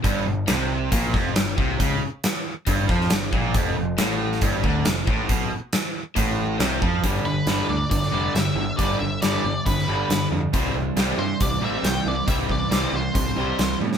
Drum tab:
HH |x---x---x---x---|x---x---x---x---|x---x---x---x---|x---x---x---x---|
SD |----o-----o-o---|----o-----ooo---|----o--o----o---|----o-------o---|
T1 |----------------|----------------|----------------|----------------|
BD |o-------o-o---o-|o-------o-o---o-|o-------o-o---o-|o-------o-----o-|

HH |x---x---x---x---|x---x---x---x---|x---x---x---x---|x---x---x---x---|
SD |----o----o--o---|----o----o--o---|----o-------o---|----o-------o--o|
T1 |----------------|----------------|----------------|--------------o-|
BD |o-------o-------|o-------o-------|o-------o-------|o-o-----o-------|